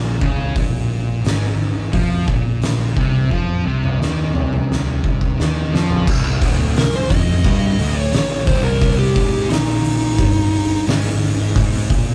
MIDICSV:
0, 0, Header, 1, 5, 480
1, 0, Start_track
1, 0, Key_signature, -3, "minor"
1, 0, Tempo, 687285
1, 391, Time_signature, 4, 2, 24, 8
1, 8483, End_track
2, 0, Start_track
2, 0, Title_t, "Lead electric guitar"
2, 0, Program_c, 0, 29
2, 4733, Note_on_c, 0, 70, 97
2, 4843, Note_off_c, 0, 70, 0
2, 4859, Note_on_c, 0, 72, 86
2, 4960, Note_off_c, 0, 72, 0
2, 4963, Note_on_c, 0, 75, 106
2, 5585, Note_off_c, 0, 75, 0
2, 5585, Note_on_c, 0, 73, 106
2, 5892, Note_off_c, 0, 73, 0
2, 5917, Note_on_c, 0, 72, 91
2, 6027, Note_on_c, 0, 70, 86
2, 6033, Note_off_c, 0, 72, 0
2, 6264, Note_off_c, 0, 70, 0
2, 6275, Note_on_c, 0, 67, 90
2, 6624, Note_off_c, 0, 67, 0
2, 6636, Note_on_c, 0, 63, 101
2, 7565, Note_off_c, 0, 63, 0
2, 8483, End_track
3, 0, Start_track
3, 0, Title_t, "Distorted electric guitar"
3, 0, Program_c, 1, 30
3, 0, Note_on_c, 1, 46, 105
3, 138, Note_on_c, 1, 49, 102
3, 140, Note_off_c, 1, 46, 0
3, 377, Note_off_c, 1, 49, 0
3, 378, Note_on_c, 1, 46, 115
3, 861, Note_off_c, 1, 46, 0
3, 861, Note_on_c, 1, 44, 100
3, 1340, Note_off_c, 1, 44, 0
3, 1340, Note_on_c, 1, 53, 107
3, 1580, Note_off_c, 1, 53, 0
3, 1582, Note_on_c, 1, 46, 97
3, 2062, Note_off_c, 1, 46, 0
3, 2068, Note_on_c, 1, 48, 103
3, 2305, Note_off_c, 1, 48, 0
3, 2310, Note_on_c, 1, 53, 115
3, 2546, Note_off_c, 1, 53, 0
3, 2549, Note_on_c, 1, 48, 105
3, 2786, Note_off_c, 1, 48, 0
3, 2791, Note_on_c, 1, 51, 105
3, 3027, Note_off_c, 1, 51, 0
3, 3033, Note_on_c, 1, 48, 96
3, 3749, Note_off_c, 1, 48, 0
3, 3757, Note_on_c, 1, 51, 107
3, 3991, Note_off_c, 1, 51, 0
3, 3996, Note_on_c, 1, 53, 100
3, 4230, Note_off_c, 1, 53, 0
3, 4236, Note_on_c, 1, 36, 119
3, 4471, Note_off_c, 1, 36, 0
3, 4478, Note_on_c, 1, 38, 112
3, 4712, Note_off_c, 1, 38, 0
3, 4719, Note_on_c, 1, 36, 78
3, 4911, Note_off_c, 1, 36, 0
3, 4957, Note_on_c, 1, 41, 108
3, 5191, Note_off_c, 1, 41, 0
3, 5198, Note_on_c, 1, 43, 114
3, 5431, Note_off_c, 1, 43, 0
3, 5440, Note_on_c, 1, 38, 108
3, 5672, Note_off_c, 1, 38, 0
3, 5682, Note_on_c, 1, 46, 108
3, 5913, Note_off_c, 1, 46, 0
3, 5918, Note_on_c, 1, 36, 109
3, 6389, Note_off_c, 1, 36, 0
3, 6392, Note_on_c, 1, 44, 116
3, 6626, Note_off_c, 1, 44, 0
3, 6630, Note_on_c, 1, 46, 114
3, 7109, Note_off_c, 1, 46, 0
3, 7109, Note_on_c, 1, 43, 113
3, 7583, Note_off_c, 1, 43, 0
3, 7590, Note_on_c, 1, 44, 117
3, 8055, Note_off_c, 1, 44, 0
3, 8064, Note_on_c, 1, 44, 123
3, 8299, Note_off_c, 1, 44, 0
3, 8302, Note_on_c, 1, 46, 109
3, 8483, Note_off_c, 1, 46, 0
3, 8483, End_track
4, 0, Start_track
4, 0, Title_t, "Picked electric bass"
4, 0, Program_c, 2, 34
4, 0, Note_on_c, 2, 34, 93
4, 133, Note_off_c, 2, 34, 0
4, 150, Note_on_c, 2, 37, 101
4, 374, Note_off_c, 2, 37, 0
4, 392, Note_on_c, 2, 34, 95
4, 844, Note_off_c, 2, 34, 0
4, 870, Note_on_c, 2, 32, 95
4, 1324, Note_off_c, 2, 32, 0
4, 1350, Note_on_c, 2, 41, 93
4, 1575, Note_off_c, 2, 41, 0
4, 1591, Note_on_c, 2, 34, 91
4, 2046, Note_off_c, 2, 34, 0
4, 2073, Note_on_c, 2, 36, 99
4, 2298, Note_off_c, 2, 36, 0
4, 2316, Note_on_c, 2, 41, 96
4, 2540, Note_off_c, 2, 41, 0
4, 2553, Note_on_c, 2, 36, 96
4, 2778, Note_off_c, 2, 36, 0
4, 2796, Note_on_c, 2, 39, 99
4, 3020, Note_off_c, 2, 39, 0
4, 3041, Note_on_c, 2, 36, 84
4, 3733, Note_off_c, 2, 36, 0
4, 3762, Note_on_c, 2, 39, 90
4, 3984, Note_off_c, 2, 39, 0
4, 4003, Note_on_c, 2, 41, 90
4, 4225, Note_off_c, 2, 41, 0
4, 4241, Note_on_c, 2, 24, 102
4, 4464, Note_off_c, 2, 24, 0
4, 4484, Note_on_c, 2, 26, 101
4, 4705, Note_off_c, 2, 26, 0
4, 4723, Note_on_c, 2, 24, 84
4, 4945, Note_off_c, 2, 24, 0
4, 4960, Note_on_c, 2, 29, 102
4, 5182, Note_off_c, 2, 29, 0
4, 5199, Note_on_c, 2, 31, 96
4, 5422, Note_off_c, 2, 31, 0
4, 5445, Note_on_c, 2, 26, 97
4, 5665, Note_off_c, 2, 26, 0
4, 5684, Note_on_c, 2, 34, 105
4, 5904, Note_off_c, 2, 34, 0
4, 5918, Note_on_c, 2, 24, 103
4, 6369, Note_off_c, 2, 24, 0
4, 6397, Note_on_c, 2, 32, 109
4, 6619, Note_off_c, 2, 32, 0
4, 6640, Note_on_c, 2, 34, 101
4, 7088, Note_off_c, 2, 34, 0
4, 7114, Note_on_c, 2, 31, 97
4, 7564, Note_off_c, 2, 31, 0
4, 7592, Note_on_c, 2, 32, 105
4, 8042, Note_off_c, 2, 32, 0
4, 8073, Note_on_c, 2, 32, 109
4, 8294, Note_off_c, 2, 32, 0
4, 8312, Note_on_c, 2, 34, 102
4, 8483, Note_off_c, 2, 34, 0
4, 8483, End_track
5, 0, Start_track
5, 0, Title_t, "Drums"
5, 150, Note_on_c, 9, 36, 106
5, 220, Note_off_c, 9, 36, 0
5, 390, Note_on_c, 9, 36, 108
5, 391, Note_on_c, 9, 46, 58
5, 460, Note_off_c, 9, 36, 0
5, 461, Note_off_c, 9, 46, 0
5, 871, Note_on_c, 9, 46, 59
5, 883, Note_on_c, 9, 38, 106
5, 941, Note_off_c, 9, 46, 0
5, 953, Note_off_c, 9, 38, 0
5, 1350, Note_on_c, 9, 36, 113
5, 1350, Note_on_c, 9, 46, 56
5, 1419, Note_off_c, 9, 46, 0
5, 1420, Note_off_c, 9, 36, 0
5, 1591, Note_on_c, 9, 36, 104
5, 1661, Note_off_c, 9, 36, 0
5, 1829, Note_on_c, 9, 46, 54
5, 1841, Note_on_c, 9, 38, 114
5, 1899, Note_off_c, 9, 46, 0
5, 1911, Note_off_c, 9, 38, 0
5, 2072, Note_on_c, 9, 36, 106
5, 2142, Note_off_c, 9, 36, 0
5, 2313, Note_on_c, 9, 36, 63
5, 2383, Note_off_c, 9, 36, 0
5, 2677, Note_on_c, 9, 48, 58
5, 2747, Note_off_c, 9, 48, 0
5, 2807, Note_on_c, 9, 38, 75
5, 2877, Note_off_c, 9, 38, 0
5, 3038, Note_on_c, 9, 47, 75
5, 3108, Note_off_c, 9, 47, 0
5, 3162, Note_on_c, 9, 47, 67
5, 3232, Note_off_c, 9, 47, 0
5, 3296, Note_on_c, 9, 38, 83
5, 3366, Note_off_c, 9, 38, 0
5, 3520, Note_on_c, 9, 36, 92
5, 3590, Note_off_c, 9, 36, 0
5, 3640, Note_on_c, 9, 36, 77
5, 3710, Note_off_c, 9, 36, 0
5, 3771, Note_on_c, 9, 38, 91
5, 3841, Note_off_c, 9, 38, 0
5, 4015, Note_on_c, 9, 38, 102
5, 4085, Note_off_c, 9, 38, 0
5, 4123, Note_on_c, 9, 43, 82
5, 4193, Note_off_c, 9, 43, 0
5, 4242, Note_on_c, 9, 36, 120
5, 4244, Note_on_c, 9, 49, 121
5, 4312, Note_off_c, 9, 36, 0
5, 4314, Note_off_c, 9, 49, 0
5, 4481, Note_on_c, 9, 36, 110
5, 4481, Note_on_c, 9, 46, 69
5, 4551, Note_off_c, 9, 36, 0
5, 4551, Note_off_c, 9, 46, 0
5, 4723, Note_on_c, 9, 46, 92
5, 4734, Note_on_c, 9, 38, 119
5, 4792, Note_off_c, 9, 46, 0
5, 4804, Note_off_c, 9, 38, 0
5, 4961, Note_on_c, 9, 36, 102
5, 4963, Note_on_c, 9, 46, 65
5, 5031, Note_off_c, 9, 36, 0
5, 5033, Note_off_c, 9, 46, 0
5, 5199, Note_on_c, 9, 36, 120
5, 5200, Note_on_c, 9, 46, 95
5, 5269, Note_off_c, 9, 36, 0
5, 5270, Note_off_c, 9, 46, 0
5, 5436, Note_on_c, 9, 46, 66
5, 5506, Note_off_c, 9, 46, 0
5, 5677, Note_on_c, 9, 46, 90
5, 5688, Note_on_c, 9, 38, 125
5, 5746, Note_off_c, 9, 46, 0
5, 5758, Note_off_c, 9, 38, 0
5, 5913, Note_on_c, 9, 46, 68
5, 5917, Note_on_c, 9, 36, 115
5, 5983, Note_off_c, 9, 46, 0
5, 5987, Note_off_c, 9, 36, 0
5, 6153, Note_on_c, 9, 46, 87
5, 6157, Note_on_c, 9, 36, 106
5, 6223, Note_off_c, 9, 46, 0
5, 6227, Note_off_c, 9, 36, 0
5, 6397, Note_on_c, 9, 36, 104
5, 6400, Note_on_c, 9, 46, 64
5, 6467, Note_off_c, 9, 36, 0
5, 6470, Note_off_c, 9, 46, 0
5, 6636, Note_on_c, 9, 46, 97
5, 6648, Note_on_c, 9, 38, 127
5, 6706, Note_off_c, 9, 46, 0
5, 6717, Note_off_c, 9, 38, 0
5, 6875, Note_on_c, 9, 46, 65
5, 6945, Note_off_c, 9, 46, 0
5, 7112, Note_on_c, 9, 46, 95
5, 7114, Note_on_c, 9, 36, 116
5, 7182, Note_off_c, 9, 46, 0
5, 7183, Note_off_c, 9, 36, 0
5, 7354, Note_on_c, 9, 46, 71
5, 7424, Note_off_c, 9, 46, 0
5, 7594, Note_on_c, 9, 46, 104
5, 7606, Note_on_c, 9, 38, 115
5, 7663, Note_off_c, 9, 46, 0
5, 7675, Note_off_c, 9, 38, 0
5, 7836, Note_on_c, 9, 46, 75
5, 7906, Note_off_c, 9, 46, 0
5, 8072, Note_on_c, 9, 36, 110
5, 8072, Note_on_c, 9, 46, 97
5, 8142, Note_off_c, 9, 36, 0
5, 8142, Note_off_c, 9, 46, 0
5, 8312, Note_on_c, 9, 36, 107
5, 8313, Note_on_c, 9, 46, 67
5, 8382, Note_off_c, 9, 36, 0
5, 8383, Note_off_c, 9, 46, 0
5, 8483, End_track
0, 0, End_of_file